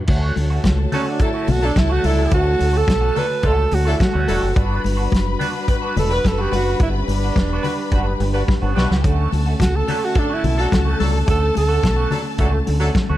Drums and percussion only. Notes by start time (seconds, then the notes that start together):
0.07 kick, crash, muted conga
0.36 open hi-hat, muted conga
0.64 kick, snare, closed hi-hat, high conga
0.92 open hi-hat, low conga
1.19 kick, closed hi-hat
1.47 open hi-hat, muted conga, low conga
1.76 kick, snare, closed hi-hat, high conga
2.03 open hi-hat, high conga
2.31 kick, closed hi-hat, muted conga
2.59 open hi-hat, muted conga
2.88 kick, snare, closed hi-hat, high conga
3.16 open hi-hat, low conga
3.43 kick, closed hi-hat
3.71 open hi-hat, muted conga
4.00 kick, snare, closed hi-hat, high conga
4.28 open hi-hat, high conga
4.56 kick, closed hi-hat, muted conga
4.84 open hi-hat, muted conga
5.12 kick, snare, closed hi-hat, high conga
5.40 open hi-hat, low conga
5.68 kick, closed hi-hat
5.96 open hi-hat, muted conga, low conga
6.24 kick, snare, closed hi-hat, high conga
6.52 open hi-hat, high conga
6.80 kick, closed hi-hat, muted conga
7.08 open hi-hat, muted conga
7.36 kick, snare, closed hi-hat, high conga
7.64 open hi-hat, low conga
7.92 kick, closed hi-hat
8.20 open hi-hat, muted conga
8.48 kick, snare, high conga
8.76 snare, high conga
8.91 snare
9.04 kick, closed hi-hat, muted conga
9.32 open hi-hat, muted conga
9.60 kick, snare, closed hi-hat, high conga
9.88 open hi-hat, low conga
10.15 kick, closed hi-hat
10.44 open hi-hat, muted conga, low conga
10.72 kick, snare, closed hi-hat, high conga
11.00 open hi-hat, high conga
11.28 kick, closed hi-hat, muted conga
11.55 open hi-hat, muted conga
11.83 kick, snare, closed hi-hat, high conga
12.11 open hi-hat, low conga
12.38 kick, closed hi-hat
12.67 open hi-hat, muted conga
12.95 kick, snare, closed hi-hat, high conga